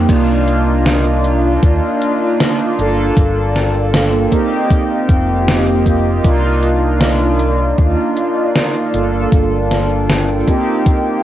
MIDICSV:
0, 0, Header, 1, 5, 480
1, 0, Start_track
1, 0, Tempo, 769231
1, 57, Time_signature, 4, 2, 24, 8
1, 7008, End_track
2, 0, Start_track
2, 0, Title_t, "Ambient pad"
2, 0, Program_c, 0, 92
2, 56, Note_on_c, 0, 65, 85
2, 56, Note_on_c, 0, 74, 77
2, 56, Note_on_c, 0, 77, 93
2, 1720, Note_off_c, 0, 74, 0
2, 1740, Note_on_c, 0, 74, 76
2, 1740, Note_on_c, 0, 79, 75
2, 2671, Note_off_c, 0, 65, 0
2, 2689, Note_off_c, 0, 74, 0
2, 2689, Note_off_c, 0, 79, 0
2, 2697, Note_on_c, 0, 65, 83
2, 2698, Note_on_c, 0, 79, 79
2, 3886, Note_off_c, 0, 79, 0
2, 3899, Note_on_c, 0, 74, 78
2, 5581, Note_on_c, 0, 79, 74
2, 6513, Note_off_c, 0, 74, 0
2, 7008, Note_off_c, 0, 65, 0
2, 7008, Note_off_c, 0, 77, 0
2, 7008, Note_off_c, 0, 79, 0
2, 7008, End_track
3, 0, Start_track
3, 0, Title_t, "Analog polysynth"
3, 0, Program_c, 1, 90
3, 0, Control_c, 1, 64, 127
3, 0, Note_on_c, 1, 58, 98
3, 0, Note_on_c, 1, 60, 87
3, 0, Note_on_c, 1, 63, 87
3, 0, Note_on_c, 1, 67, 108
3, 46, Note_off_c, 1, 58, 0
3, 46, Note_on_c, 1, 58, 97
3, 53, Note_on_c, 1, 62, 88
3, 59, Note_off_c, 1, 63, 0
3, 59, Note_on_c, 1, 63, 87
3, 65, Control_c, 1, 64, 0
3, 65, Note_on_c, 1, 65, 107
3, 66, Note_off_c, 1, 60, 0
3, 66, Note_off_c, 1, 67, 0
3, 185, Control_c, 1, 64, 127
3, 1686, Note_off_c, 1, 58, 0
3, 1689, Note_off_c, 1, 62, 0
3, 1692, Note_off_c, 1, 63, 0
3, 1696, Note_off_c, 1, 65, 0
3, 1725, Note_on_c, 1, 58, 80
3, 1731, Note_on_c, 1, 62, 75
3, 1737, Note_on_c, 1, 65, 77
3, 1743, Note_on_c, 1, 69, 93
3, 1745, Control_c, 1, 64, 0
3, 1847, Control_c, 1, 64, 127
3, 2645, Note_off_c, 1, 58, 0
3, 2648, Note_off_c, 1, 62, 0
3, 2651, Note_off_c, 1, 65, 0
3, 2655, Note_off_c, 1, 69, 0
3, 2684, Note_on_c, 1, 58, 96
3, 2690, Note_on_c, 1, 60, 85
3, 2696, Note_on_c, 1, 63, 87
3, 2703, Note_on_c, 1, 67, 104
3, 2706, Control_c, 1, 64, 0
3, 2819, Control_c, 1, 64, 127
3, 3845, Note_off_c, 1, 58, 0
3, 3848, Note_off_c, 1, 60, 0
3, 3851, Note_off_c, 1, 63, 0
3, 3854, Note_off_c, 1, 67, 0
3, 3885, Note_on_c, 1, 58, 96
3, 3891, Note_on_c, 1, 62, 87
3, 3897, Note_on_c, 1, 63, 88
3, 3904, Note_on_c, 1, 65, 107
3, 3906, Control_c, 1, 64, 0
3, 3999, Control_c, 1, 64, 127
3, 5525, Note_off_c, 1, 58, 0
3, 5528, Note_off_c, 1, 62, 0
3, 5531, Note_off_c, 1, 63, 0
3, 5535, Note_off_c, 1, 65, 0
3, 5565, Note_on_c, 1, 58, 81
3, 5571, Note_on_c, 1, 62, 76
3, 5578, Note_on_c, 1, 65, 75
3, 5583, Note_on_c, 1, 69, 95
3, 5584, Control_c, 1, 64, 0
3, 5691, Control_c, 1, 64, 127
3, 6485, Note_off_c, 1, 58, 0
3, 6489, Note_off_c, 1, 62, 0
3, 6492, Note_off_c, 1, 65, 0
3, 6494, Note_off_c, 1, 69, 0
3, 6525, Note_on_c, 1, 58, 93
3, 6532, Note_on_c, 1, 60, 86
3, 6537, Note_on_c, 1, 63, 86
3, 6545, Note_on_c, 1, 67, 103
3, 6546, Control_c, 1, 64, 0
3, 6649, Control_c, 1, 64, 127
3, 7008, Note_off_c, 1, 58, 0
3, 7008, Note_off_c, 1, 60, 0
3, 7008, Note_off_c, 1, 63, 0
3, 7008, Note_off_c, 1, 67, 0
3, 7008, End_track
4, 0, Start_track
4, 0, Title_t, "Fingered electric bass"
4, 0, Program_c, 2, 33
4, 57, Note_on_c, 2, 36, 99
4, 976, Note_off_c, 2, 36, 0
4, 1016, Note_on_c, 2, 39, 98
4, 1114, Note_off_c, 2, 39, 0
4, 1737, Note_on_c, 2, 31, 83
4, 1926, Note_off_c, 2, 31, 0
4, 1977, Note_on_c, 2, 31, 98
4, 2656, Note_off_c, 2, 31, 0
4, 3176, Note_on_c, 2, 29, 89
4, 3856, Note_off_c, 2, 29, 0
4, 3896, Note_on_c, 2, 36, 96
4, 4816, Note_off_c, 2, 36, 0
4, 4857, Note_on_c, 2, 39, 93
4, 4954, Note_off_c, 2, 39, 0
4, 5577, Note_on_c, 2, 31, 85
4, 5766, Note_off_c, 2, 31, 0
4, 5817, Note_on_c, 2, 31, 98
4, 6496, Note_off_c, 2, 31, 0
4, 7008, End_track
5, 0, Start_track
5, 0, Title_t, "Drums"
5, 57, Note_on_c, 9, 36, 121
5, 59, Note_on_c, 9, 42, 87
5, 59, Note_on_c, 9, 49, 110
5, 119, Note_off_c, 9, 36, 0
5, 121, Note_off_c, 9, 42, 0
5, 121, Note_off_c, 9, 49, 0
5, 298, Note_on_c, 9, 42, 65
5, 360, Note_off_c, 9, 42, 0
5, 537, Note_on_c, 9, 38, 119
5, 537, Note_on_c, 9, 42, 84
5, 600, Note_off_c, 9, 38, 0
5, 600, Note_off_c, 9, 42, 0
5, 777, Note_on_c, 9, 42, 68
5, 840, Note_off_c, 9, 42, 0
5, 1016, Note_on_c, 9, 36, 127
5, 1018, Note_on_c, 9, 42, 84
5, 1079, Note_off_c, 9, 36, 0
5, 1080, Note_off_c, 9, 42, 0
5, 1258, Note_on_c, 9, 42, 69
5, 1321, Note_off_c, 9, 42, 0
5, 1498, Note_on_c, 9, 38, 118
5, 1498, Note_on_c, 9, 42, 84
5, 1561, Note_off_c, 9, 38, 0
5, 1561, Note_off_c, 9, 42, 0
5, 1740, Note_on_c, 9, 42, 67
5, 1802, Note_off_c, 9, 42, 0
5, 1976, Note_on_c, 9, 36, 127
5, 1978, Note_on_c, 9, 42, 86
5, 2038, Note_off_c, 9, 36, 0
5, 2041, Note_off_c, 9, 42, 0
5, 2220, Note_on_c, 9, 38, 65
5, 2220, Note_on_c, 9, 42, 68
5, 2282, Note_off_c, 9, 38, 0
5, 2282, Note_off_c, 9, 42, 0
5, 2459, Note_on_c, 9, 38, 124
5, 2459, Note_on_c, 9, 42, 84
5, 2521, Note_off_c, 9, 38, 0
5, 2521, Note_off_c, 9, 42, 0
5, 2696, Note_on_c, 9, 36, 63
5, 2699, Note_on_c, 9, 42, 67
5, 2759, Note_off_c, 9, 36, 0
5, 2761, Note_off_c, 9, 42, 0
5, 2936, Note_on_c, 9, 36, 127
5, 2940, Note_on_c, 9, 42, 86
5, 2999, Note_off_c, 9, 36, 0
5, 3002, Note_off_c, 9, 42, 0
5, 3176, Note_on_c, 9, 36, 113
5, 3180, Note_on_c, 9, 42, 70
5, 3239, Note_off_c, 9, 36, 0
5, 3242, Note_off_c, 9, 42, 0
5, 3419, Note_on_c, 9, 38, 126
5, 3419, Note_on_c, 9, 42, 82
5, 3481, Note_off_c, 9, 38, 0
5, 3481, Note_off_c, 9, 42, 0
5, 3656, Note_on_c, 9, 36, 66
5, 3659, Note_on_c, 9, 42, 67
5, 3719, Note_off_c, 9, 36, 0
5, 3721, Note_off_c, 9, 42, 0
5, 3897, Note_on_c, 9, 36, 127
5, 3898, Note_on_c, 9, 42, 86
5, 3959, Note_off_c, 9, 36, 0
5, 3960, Note_off_c, 9, 42, 0
5, 4137, Note_on_c, 9, 42, 66
5, 4199, Note_off_c, 9, 42, 0
5, 4376, Note_on_c, 9, 38, 125
5, 4376, Note_on_c, 9, 42, 84
5, 4438, Note_off_c, 9, 38, 0
5, 4438, Note_off_c, 9, 42, 0
5, 4615, Note_on_c, 9, 42, 67
5, 4678, Note_off_c, 9, 42, 0
5, 4855, Note_on_c, 9, 42, 83
5, 4857, Note_on_c, 9, 36, 127
5, 4918, Note_off_c, 9, 42, 0
5, 4919, Note_off_c, 9, 36, 0
5, 5096, Note_on_c, 9, 42, 70
5, 5158, Note_off_c, 9, 42, 0
5, 5337, Note_on_c, 9, 38, 127
5, 5337, Note_on_c, 9, 42, 82
5, 5400, Note_off_c, 9, 38, 0
5, 5400, Note_off_c, 9, 42, 0
5, 5578, Note_on_c, 9, 42, 66
5, 5640, Note_off_c, 9, 42, 0
5, 5817, Note_on_c, 9, 36, 127
5, 5819, Note_on_c, 9, 42, 80
5, 5879, Note_off_c, 9, 36, 0
5, 5882, Note_off_c, 9, 42, 0
5, 6060, Note_on_c, 9, 38, 61
5, 6060, Note_on_c, 9, 42, 64
5, 6123, Note_off_c, 9, 38, 0
5, 6123, Note_off_c, 9, 42, 0
5, 6300, Note_on_c, 9, 38, 127
5, 6300, Note_on_c, 9, 42, 80
5, 6362, Note_off_c, 9, 38, 0
5, 6362, Note_off_c, 9, 42, 0
5, 6537, Note_on_c, 9, 36, 65
5, 6539, Note_on_c, 9, 42, 65
5, 6599, Note_off_c, 9, 36, 0
5, 6601, Note_off_c, 9, 42, 0
5, 6777, Note_on_c, 9, 36, 127
5, 6779, Note_on_c, 9, 42, 76
5, 6840, Note_off_c, 9, 36, 0
5, 6841, Note_off_c, 9, 42, 0
5, 7008, End_track
0, 0, End_of_file